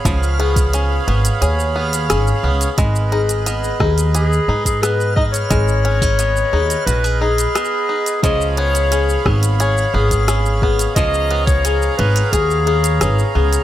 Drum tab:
HH |x---x-x-x---x-x-x-----x-x-----x-|x---x-x-x-----x-x-----x-x-----x-|x---x-x-x-----x-x-----x-x-----x-|x---x-x-x-----x-x-----x-x-----x-|
SH |x-x---x-x-----x-x-x---x-x-x---x-|x-x---x-x-x---x-x-x---x-x-x---x-|x-x---x-x-x---x-x-x---x-xx----x-|x-x---x-x-x---x-x-x---x-x-x---x-|
SD |------------------------r-------|------------r-----------r-------|------------------------r-------|------------r-----------r-------|
BD |o-----o-------------------------|o-----------o---------o-----o---|o-----o-------------------------|o-----------o---------o-----o---|

HH |x---x-x-x---x-x-x---x-x-x-----x-|
SH |x-x---x-x-x---x-x-x---x-x-x---x-|
SD |------------------------r-------|
BD |o-----o---------o---------------|